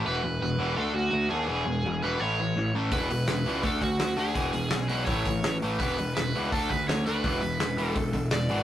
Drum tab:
HH |--------|--------|oooooooo|oooooooo|
SD |--------|--------|--o---o-|--o---o-|
BD |--------|--------|o---oo--|o---oo--|

HH |oooooooo|oooooooo|
SD |--o---o-|--o---o-|
BD |o---oo--|o---oo--|